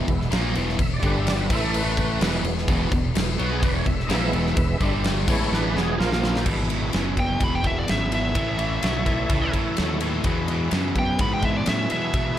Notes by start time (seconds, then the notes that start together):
0.07 E1 E2 B2 G#3 B3 E4, kick, crash
0.21 snare
0.31 A#1 A#2 F3 A#3, snare, crash
0.55 E1 E2 B2 E3, crash
0.69 snare
0.78 E1 E2 B2 E5, kick, crash
0.94 D5
1.03 G1 G2 D3 G3 D4 B4, kick, crash
1.18 E5
1.27 D5, snare, crash
1.41 B4
1.50 A1 A2 E3 A3 E4 E5, kick, crash
1.64 D5
1.74 B4, crash
1.97 B4, kick, crash
2.20 E1 E2 B2 E3 G#3 B3, snare, crash
2.43 E1 E2 B2, crash
2.58 snare
2.68 E1 E2 B2 E3, kick, crash
2.92 E1 E2 B2, kick, crash
3.15 E1 E2 B2 E3 G#3 B3, snare, crash
3.38 B1 B2 F#3 B3 F#4, crash
3.52 G#4
3.62 E1 E2 B2 E3 B4, kick, crash
3.75 C#5
3.86 E1 E2 B2 E5, kick, crash
4.00 snare
4.07 A#1 A#2 E3 F3 G#3 A#3 B3 D#5, crash
4.11 E5, snare
4.33 E1 E2 B2 E3, crash
4.46 snare
4.57 E1 E2 B2, kick, crash
4.80 G1 G2 D3 G3 D4, kick, crash
5.04 snare, crash
5.25 A1 A2 E3 G#3 B3 E4 C5, kick, crash
5.29 A3 C#5
5.52 A1 A2 E3 A3 D4 B4, snare
5.75 E1 E2 B2 E3 B3 G#4, snare
5.98 A#1 A#2 F3 A#3 F4 A#4, snare
6.12 A3, snare
6.19 B3 C4
6.24 D4 E4, snare
6.30 F4 G4
6.36 A4 B4, snare
6.41 E2 C5 D5
6.45 G#1 B2 E4 G#4 B4 E5, kick, crash
6.70 E2 B2, ride
6.93 F#1 E2 C#3, snare, ride
7.17 E2 B2 G5, kick, ride
7.40 E1 E2 B2 B5, kick, ride
7.55 G5
7.63 E2 B2 E5, kick, ride
7.79 D5
7.87 G#1 E2 C#3 E5, snare, ride
8.10 E2 B2, ride
8.15 E5
8.34 A1 A2 E3 E4 A4 C#5 E5, kick, ride
8.58 A2 E3, ride
8.82 B1 A2 F#3, snare, ride
9.05 A2 E3, kick, ride
9.29 C#2 A2 E3, kick, ride
9.52 A2 E3, kick, ride
9.77 D#2 A2 F#3, snare, ride
10.01 A2 E3, ride
10.24 E2 B2 E4 G#4 B4 E5, kick, ride
10.48 E2 B2, ride
10.71 E2 F#2 C#3, snare, ride
10.95 E2 B2 G5, kick, ride
11.19 E2 G#2 B2 B5, kick, ride
11.33 G5
11.42 E2 B2 E5, kick, ride
11.57 D5
11.66 E2 A2 C#3 E5, snare, ride
11.89 E2 B2 E5, muted fingered electric bass stroke, ride
12.13 E2 B2, kick, ride